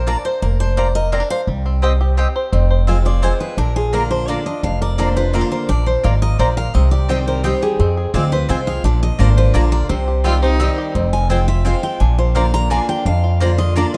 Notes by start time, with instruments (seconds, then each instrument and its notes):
Already playing: upright bass A#1, five-string banjo A#4 C5
0.07 mandolin A#3 F4 D5 A#5, five-string banjo D4, steel-string acoustic guitar D5
0.25 steel-string acoustic guitar C5, five-string banjo C5
0.42 upright bass F1, five-string banjo A#3, steel-string acoustic guitar A#4
0.60 five-string banjo D4, steel-string acoustic guitar C5
0.77 mandolin A#3 F4 D5 A#5, five-string banjo C5, steel-string acoustic guitar D5
0.95 five-string banjo A#4, steel-string acoustic guitar D#5
1.12 mandolin A#3 F4 D5 A#5, five-string banjo C4, steel-string acoustic guitar D5
1.20 five-string banjo D4
1.30 five-string banjo C5, steel-string acoustic guitar F5
1.47 upright bass C2, five-string banjo G3
1.66 five-string banjo C4
1.82 mandolin C4 G4 D#5 G5, five-string banjo C5
2.01 five-string banjo G4
2.17 mandolin C4 G4 D#5 G5, five-string banjo C4
2.36 five-string banjo C5
2.52 upright bass F1, steel-string acoustic guitar F2, five-string banjo C4
2.70 five-string banjo C5
2.87 steel-string acoustic guitar F3 G#3 C4 F4, mandolin C4 F4 C5 G#5, five-string banjo F4
3.05 steel-string acoustic guitar C4 F4 D5, five-string banjo G#4
3.22 steel-string acoustic guitar F3 G#3 C4 F4 C5, mandolin C4 F4 C5 G#5, five-string banjo C5
3.40 five-string banjo G#4, steel-string acoustic guitar B4
3.57 upright bass A#1, steel-string acoustic guitar A#2 A#4, five-string banjo D4
3.76 five-string banjo F4, steel-string acoustic guitar G#4
3.93 steel-string acoustic guitar D3 A#3 D4 F4 A#4, mandolin A#3 F4 D5 A#5, five-string banjo A#4
4.11 five-string banjo D4, steel-string acoustic guitar C5
4.28 steel-string acoustic guitar D3 A#3 D4 F4 D5, mandolin A#3 F4 D5 A#5, five-string banjo F4
4.46 five-string banjo D4, steel-string acoustic guitar D4 F4 D#5
4.63 upright bass F1, steel-string acoustic guitar F2 F5, five-string banjo D4
4.82 five-string banjo A#4, steel-string acoustic guitar D5
4.98 steel-string acoustic guitar D3 A#3 D4 F4 C5, mandolin A#3 F4 D5 A#5, five-string banjo D4
5.16 steel-string acoustic guitar D4 F4 B4, five-string banjo C5
5.33 steel-string acoustic guitar D3 A#3 D4 F4 A#4, mandolin A#3 F4 D5 A#5, five-string banjo C4
5.41 five-string banjo D4
5.52 five-string banjo A#4, steel-string acoustic guitar C5
5.69 upright bass A#1, steel-string acoustic guitar A#2 D5, five-string banjo D4
5.86 steel-string acoustic guitar C5, five-string banjo C5
6.03 upright bass G#1, steel-string acoustic guitar G#2 D5, mandolin A#3 F4 D5 A#5, five-string banjo F4
6.22 five-string banjo A#4, steel-string acoustic guitar D#5
6.39 upright bass A#1, steel-string acoustic guitar A#2 D5, mandolin A#3 F4 D5 A#5, five-string banjo C5
6.57 five-string banjo A#4, steel-string acoustic guitar F5
6.74 upright bass C2, steel-string acoustic guitar C3 D#5, five-string banjo C4
6.91 five-string banjo G4, steel-string acoustic guitar D5
7.09 steel-string acoustic guitar D#3 G3 C4 G4 C5, mandolin C4 G4 D#5 G5, five-string banjo C4
7.28 steel-string acoustic guitar A#4, five-string banjo C5
7.44 steel-string acoustic guitar D#3 G3 C4 G4 C5, mandolin C4 G4 D#5 G5, five-string banjo C4
7.62 five-string banjo G4, steel-string acoustic guitar G#4
7.79 upright bass F2, steel-string acoustic guitar F2, five-string banjo C4
7.97 five-string banjo G#4
8.14 upright bass D2, steel-string acoustic guitar F3 G#3 C4 F4 D5, mandolin C4 F4 C5 G#5, five-string banjo C4
8.31 steel-string acoustic guitar C4 F4 B4, five-string banjo C5
8.49 upright bass C2, steel-string acoustic guitar F3 G#3 C4 F4 C5, mandolin C4 F4 C5 G#5, five-string banjo C4
8.67 five-string banjo G#4, steel-string acoustic guitar F5
8.84 upright bass A#1, steel-string acoustic guitar A#2 D5, five-string banjo D4
9.03 steel-string acoustic guitar D#5
9.19 upright bass G#1, steel-string acoustic guitar D3 A#3 D4 F4 C5, mandolin A#3 F4 D5 A#5, five-string banjo D4
9.37 steel-string acoustic guitar B4, five-string banjo C5
9.54 upright bass A#1, steel-string acoustic guitar D3 A#3 D4 F4 A#4, mandolin A#3 F4 D5 A#5, five-string banjo D4
9.72 five-string banjo A#4, steel-string acoustic guitar D5
9.89 upright bass C2, steel-string acoustic guitar C3 C5, five-string banjo C4
10.08 five-string banjo G4
10.24 steel-string acoustic guitar D#3 G3 C4 G4, mandolin C4 G4 D#5 G5, five-string banjo C4, fiddle F4
10.42 steel-string acoustic guitar C4 G4, fiddle D#4, five-string banjo C5
10.59 steel-string acoustic guitar D#3 G3 C4 G4, mandolin C4 G4 D#5 G5, five-string banjo C4
10.78 five-string banjo G4
10.95 upright bass F1, steel-string acoustic guitar F2, five-string banjo C4
11.13 five-string banjo F4, steel-string acoustic guitar G#5
11.29 steel-string acoustic guitar F3 G#3 C4 F4 G5, mandolin C4 F4 C5 G#5, five-string banjo C5
11.48 steel-string acoustic guitar C4 F4 E5, five-string banjo F4
11.65 steel-string acoustic guitar F3 G#3 C4 F4 F5, mandolin C4 F4 C5 G#5, five-string banjo C4
11.83 five-string banjo F4, steel-string acoustic guitar G5
12.00 upright bass A#1, steel-string acoustic guitar A#2 G#5, five-string banjo D4
12.18 five-string banjo F4, steel-string acoustic guitar C5
12.35 steel-string acoustic guitar D3 A#3 D4 F4 F5, mandolin A#3 F4 D5 A#5, five-string banjo C5
12.54 five-string banjo F4, steel-string acoustic guitar A#5
12.70 steel-string acoustic guitar D3 A#3 D4 F4 G#5, mandolin A#3 F4 D5 A#5, five-string banjo D4
12.89 five-string banjo F4, steel-string acoustic guitar G5
13.05 upright bass F2, steel-string acoustic guitar F2 F5, five-string banjo D4
13.24 five-string banjo F4
13.40 steel-string acoustic guitar D3 A#3 D4 F4, mandolin A#3 F4 D5 A#5, five-string banjo C5
13.58 five-string banjo F4, steel-string acoustic guitar D#5
13.75 steel-string acoustic guitar D3 A#3 D4 F4 D5, mandolin A#3 F4 D5 A#5, five-string banjo D4
13.94 five-string banjo F4, steel-string acoustic guitar D#5